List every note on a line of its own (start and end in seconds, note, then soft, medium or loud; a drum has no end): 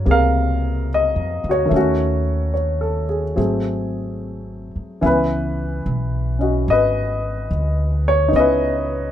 0.00 1.69 F#3 soft
0.00 0.05 A#3 soft
0.00 1.48 F#4 soft
0.00 0.11 A#4 medium
0.00 1.51 C#5 medium
0.05 1.12 C#2 medium
0.05 1.72 C3 soft
0.05 1.71 A#3 soft
0.05 1.72 G#4 soft
0.11 1.70 A#4 medium
0.11 0.87 F5 medium
0.94 1.48 D#5 medium
1.16 1.42 F2 soft
1.44 1.70 D2 medium
1.49 1.75 F#4 soft
1.49 2.52 C#5 medium
1.66 3.34 D#3 soft
1.66 3.34 A3 medium
1.71 3.33 D#2 medium
1.71 3.38 C#4 soft
1.76 3.39 F#4 medium
2.54 3.05 C#5 soft
2.81 3.24 A4 soft
3.09 3.35 G#4 soft
3.36 4.70 G#1 medium
3.36 5.01 F#3 soft
3.36 5.02 A3 soft
3.36 5.02 C4 soft
3.36 5.02 G#4 soft
4.76 muted upright bass stroke soft
5.01 5.81 C#2 medium
5.01 8.33 E3 medium
5.01 8.30 B3 soft
5.01 6.37 C#4 soft
5.01 5.07 E4 medium
5.06 6.67 E4 soft
5.06 6.71 B4 medium
5.86 6.64 B1 medium
6.39 8.33 C#4 soft
6.39 8.34 F#4 soft
6.39 6.69 D#5 soft
6.68 7.46 G#1 medium
6.68 7.47 D#5 medium
6.72 8.31 B4 medium
7.51 8.29 D2 medium
8.08 8.35 C#5 medium
8.28 9.12 B3 soft
8.28 9.12 D#4 soft
8.33 9.12 C#2 medium
8.33 9.12 C#4 soft
8.33 9.12 D#5 medium
8.40 9.12 E4 soft
8.40 9.12 B4 medium